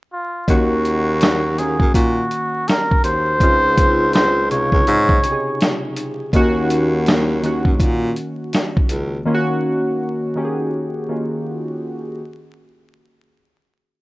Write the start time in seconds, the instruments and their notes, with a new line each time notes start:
0.13 muted trumpet F4
0.48 baritone saxophone D#2, synth keys D#3 A#3 C#4 F#4, muted trumpet F#4, kick, closed hi-hat
0.85 closed hi-hat
1.21 snare, closed hi-hat
1.58 synth keys D#3 A#3 C#4 F#4, muted trumpet G#4, closed hi-hat
1.80 baritone saxophone F#2, kick
1.94 baritone saxophone A#2, muted trumpet F#4, kick, closed hi-hat
2.31 closed hi-hat
2.68 muted trumpet A#4, snare, closed hi-hat
2.91 kick
3.04 baritone saxophone D#2, muted trumpet C5, closed hi-hat
3.40 baritone saxophone C#2, synth keys C#3 C4 D#4 F4, kick, closed hi-hat
3.78 kick, closed hi-hat
4.13 muted trumpet C5, snare, closed hi-hat
4.51 synth keys C3 C#3 D#4 F4, muted trumpet C#5, closed hi-hat
4.72 baritone saxophone C#2, kick
4.87 baritone saxophone G#2, closed hi-hat
5.09 kick
5.23 synth keys C3 C#3 D#4 G4, closed hi-hat
5.32 synth keys G#4
5.61 snare, closed hi-hat
5.96 closed hi-hat
6.33 baritone saxophone D#2, synth keys D#3 A#3 C#4 F#4, kick, closed hi-hat
6.70 closed hi-hat
7.06 snare, closed hi-hat
7.43 synth keys D#3 A#3 C#4 F#4, closed hi-hat
7.65 baritone saxophone F#2, kick
7.80 baritone saxophone A#2, kick, closed hi-hat
8.16 closed hi-hat
8.53 snare, closed hi-hat
8.77 kick
8.89 baritone saxophone C#2, closed hi-hat
9.25 synth keys D#3 A#3 C#4 F4
9.34 synth keys F#4
10.36 synth keys D#3 A#3 C#4 G4
10.45 synth keys G#4
11.09 synth keys D#3 A#3 C#4 F4